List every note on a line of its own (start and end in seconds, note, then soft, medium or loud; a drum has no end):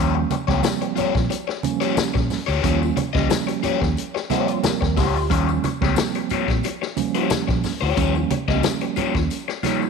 0.00 0.24 D#2 loud
0.00 0.34 F3 medium
0.00 0.34 G3 medium
0.00 0.34 A#3 medium
0.00 0.34 C#4 medium
0.00 0.13 F4 loud
0.00 0.14 G4 medium
0.00 0.14 C#5 medium
0.15 muted overdriven electric guitar stroke soft
0.30 muted overdriven electric guitar stroke soft
0.30 closed hi-hat medium
0.30 tambourine medium
0.30 high conga medium
0.48 0.61 C#2 medium
0.48 1.32 F3 medium
0.48 1.32 G3 medium
0.48 1.32 A#3 medium
0.48 1.32 C4 medium
0.48 0.60 F4 medium
0.48 0.60 G4 medium
0.48 0.59 C#5 medium
0.48 kick medium
0.48 snare soft
0.63 muted overdriven electric guitar stroke soft
0.63 snare loud
0.63 closed hi-hat medium
0.63 tambourine loud
0.63 muted conga soft
0.63 high conga medium
0.82 muted overdriven electric guitar stroke soft
0.82 closed hi-hat medium
0.96 1.13 F4 medium
0.96 1.14 G4 loud
0.96 1.13 C#5 loud
0.96 muted fingered electric bass stroke soft
0.96 closed hi-hat medium
0.96 tambourine medium
0.96 muted conga soft
0.96 low conga medium
1.15 1.27 A#1 medium
1.15 muted overdriven electric guitar stroke soft
1.15 kick medium
1.15 snare soft
1.30 muted overdriven electric guitar stroke soft
1.30 closed hi-hat medium
1.30 tambourine medium
1.30 muted conga soft
1.48 muted overdriven electric guitar stroke soft
1.48 snare soft
1.63 2.37 F3 medium
1.63 2.37 G3 medium
1.63 2.37 A#3 medium
1.63 2.37 C#4 loud
1.63 closed hi-hat medium
1.63 tambourine medium
1.63 muted conga soft
1.63 high conga medium
1.81 1.95 F4 medium
1.81 1.96 G4 medium
1.81 1.96 C#5 medium
1.81 closed hi-hat medium
1.81 tambourine soft
1.96 muted overdriven electric guitar stroke soft
1.96 muted fingered electric bass stroke soft
1.96 snare loud
1.96 closed hi-hat medium
1.96 tambourine loud
1.96 high conga medium
2.14 2.28 A#1 medium
2.14 muted overdriven electric guitar stroke medium
2.14 kick medium
2.14 snare soft
2.30 snare soft
2.30 open hi-hat medium
2.30 tambourine medium
2.30 muted conga soft
2.30 low conga medium
2.47 2.61 D2 medium
2.47 2.61 F4 medium
2.47 2.61 G4 medium
2.47 2.62 C#5 medium
2.47 tambourine soft
2.62 2.90 D#2 loud
2.62 3.01 F3 medium
2.62 3.01 G3 medium
2.62 3.01 A#3 medium
2.62 3.01 C#4 loud
2.62 2.79 F4 medium
2.62 2.80 G4 medium
2.62 2.79 C#5 medium
2.62 kick loud
2.62 closed hi-hat loud
2.62 tambourine medium
2.80 muted overdriven electric guitar stroke soft
2.80 tambourine soft
2.96 muted overdriven electric guitar stroke soft
2.96 closed hi-hat medium
2.96 tambourine medium
2.96 muted conga soft
2.96 high conga medium
3.13 3.27 C#2 medium
3.13 3.99 F3 medium
3.13 3.99 G3 medium
3.13 3.99 A#3 medium
3.13 3.99 C#4 medium
3.13 3.26 F4 medium
3.13 3.26 G4 medium
3.13 3.26 D#5 medium
3.13 kick loud
3.13 snare soft
3.30 muted overdriven electric guitar stroke soft
3.30 snare loud
3.30 closed hi-hat medium
3.30 tambourine medium
3.30 muted conga soft
3.30 high conga medium
3.47 muted overdriven electric guitar stroke soft
3.47 closed hi-hat medium
3.63 3.80 F4 medium
3.63 3.80 G4 medium
3.63 3.80 C#5 medium
3.63 muted fingered electric bass stroke soft
3.63 closed hi-hat medium
3.63 tambourine soft
3.63 low conga medium
3.81 3.94 D#2 medium
3.81 muted overdriven electric guitar stroke soft
3.81 kick medium
3.81 snare soft
3.97 closed hi-hat medium
3.97 tambourine soft
3.97 muted conga soft
4.15 muted overdriven electric guitar stroke soft
4.15 snare soft
4.30 5.04 F3 medium
4.30 5.04 G3 medium
4.30 5.04 A#3 medium
4.30 5.04 C4 medium
4.30 4.51 F4 medium
4.30 4.48 G4 medium
4.30 4.47 C#5 loud
4.30 4.47 D#5 medium
4.30 snare soft
4.30 closed hi-hat medium
4.30 tambourine medium
4.30 muted conga soft
4.30 high conga medium
4.48 4.63 C#5 medium
4.48 muted overdriven electric guitar stroke medium
4.48 closed hi-hat medium
4.48 tambourine soft
4.63 4.95 A#4 medium
4.63 muted overdriven electric guitar stroke soft
4.63 snare loud
4.63 closed hi-hat medium
4.63 tambourine loud
4.63 muted conga soft
4.63 high conga medium
4.81 4.94 D#2 medium
4.81 muted overdriven electric guitar stroke soft
4.81 kick medium
4.81 snare soft
4.97 5.16 C#2 medium
4.97 5.18 F4 medium
4.97 5.28 G4 medium
4.97 5.15 G4 medium
4.97 5.14 C#5 loud
4.97 kick loud
4.97 snare soft
4.97 open hi-hat medium
4.97 tambourine medium
4.97 low conga medium
5.15 5.28 D2 medium
5.15 muted overdriven electric guitar stroke soft
5.15 tambourine soft
5.30 5.57 D#2 loud
5.30 5.67 F3 medium
5.30 5.67 G3 medium
5.30 5.67 A#3 medium
5.30 5.67 C#4 loud
5.30 5.47 F4 medium
5.30 5.47 G4 medium
5.30 5.47 C#5 medium
5.30 kick loud
5.30 closed hi-hat loud
5.30 tambourine medium
5.30 muted conga soft
5.48 muted overdriven electric guitar stroke soft
5.48 tambourine soft
5.64 muted overdriven electric guitar stroke soft
5.64 closed hi-hat medium
5.64 tambourine medium
5.64 high conga loud
5.81 5.94 C#2 medium
5.81 6.66 F3 medium
5.81 6.66 G3 medium
5.81 6.66 A#3 medium
5.81 6.66 C4 medium
5.81 5.94 F4 medium
5.81 5.94 G4 medium
5.81 5.93 C#5 medium
5.81 kick medium
5.81 snare soft
5.96 muted overdriven electric guitar stroke soft
5.96 snare loud
5.96 closed hi-hat medium
5.96 tambourine medium
5.96 muted conga soft
5.96 high conga medium
6.15 muted overdriven electric guitar stroke soft
6.15 closed hi-hat medium
6.29 6.48 F4 medium
6.29 6.48 G4 medium
6.29 6.48 C#5 loud
6.29 muted fingered electric bass stroke soft
6.29 closed hi-hat medium
6.29 tambourine medium
6.29 muted conga soft
6.29 low conga medium
6.48 6.61 A#1 medium
6.48 muted overdriven electric guitar stroke soft
6.48 kick medium
6.48 snare soft
6.63 muted overdriven electric guitar stroke soft
6.63 closed hi-hat medium
6.63 tambourine medium
6.63 muted conga soft
6.82 muted overdriven electric guitar stroke soft
6.82 snare soft
6.97 7.71 F3 medium
6.97 7.71 G3 medium
6.97 7.71 A#3 medium
6.97 7.71 C#4 medium
6.97 closed hi-hat medium
6.97 tambourine medium
6.97 high conga medium
7.14 7.29 F4 medium
7.14 7.30 G4 medium
7.14 7.31 C#5 medium
7.14 closed hi-hat medium
7.14 tambourine soft
7.30 muted overdriven electric guitar stroke soft
7.30 muted fingered electric bass stroke soft
7.30 snare loud
7.30 closed hi-hat medium
7.30 tambourine loud
7.30 muted conga soft
7.30 high conga medium
7.48 7.61 A#1 loud
7.48 muted overdriven electric guitar stroke soft
7.48 kick medium
7.48 snare soft
7.64 snare soft
7.64 open hi-hat medium
7.64 tambourine medium
7.64 low conga medium
7.81 7.94 D2 loud
7.81 7.95 F4 medium
7.81 7.96 G4 medium
7.81 7.97 C#5 medium
7.96 8.24 D#2 loud
7.96 8.34 F3 medium
7.96 8.34 G3 medium
7.96 8.34 A#3 medium
7.96 8.34 C#4 medium
7.96 8.13 F4 medium
7.96 8.14 G4 medium
7.96 8.13 C#5 medium
7.96 kick loud
7.96 closed hi-hat loud
7.96 tambourine medium
7.96 muted conga soft
8.14 muted overdriven electric guitar stroke soft
8.14 tambourine soft
8.30 muted overdriven electric guitar stroke soft
8.30 closed hi-hat medium
8.30 tambourine medium
8.30 muted conga soft
8.30 high conga loud
8.48 8.61 C#2 medium
8.48 9.33 F3 medium
8.48 9.33 G3 medium
8.48 9.33 A#3 medium
8.48 8.54 C4 medium
8.48 8.61 F4 medium
8.48 8.60 G4 medium
8.48 8.60 D#5 medium
8.48 kick medium
8.48 snare soft
8.55 9.36 C#4 medium
8.63 muted overdriven electric guitar stroke soft
8.63 snare loud
8.63 closed hi-hat loud
8.63 tambourine medium
8.63 high conga medium
8.81 muted overdriven electric guitar stroke soft
8.81 closed hi-hat medium
8.96 9.14 F4 loud
8.96 9.14 G4 medium
8.96 9.13 C#5 loud
8.96 muted fingered electric bass stroke soft
8.96 closed hi-hat medium
8.96 tambourine medium
8.96 low conga medium
9.14 9.27 D#2 medium
9.14 muted overdriven electric guitar stroke soft
9.14 kick medium
9.14 snare soft
9.30 closed hi-hat medium
9.30 tambourine medium
9.48 muted overdriven electric guitar stroke soft
9.48 snare soft
9.63 9.90 F3 medium
9.63 9.90 G3 medium
9.63 9.90 A#3 medium
9.63 9.90 D#4 medium
9.63 9.80 F4 medium
9.63 9.81 G4 medium
9.63 9.80 C#5 medium
9.63 snare soft
9.63 closed hi-hat medium
9.63 tambourine soft
9.63 high conga medium
9.81 muted overdriven electric guitar stroke medium
9.81 tambourine soft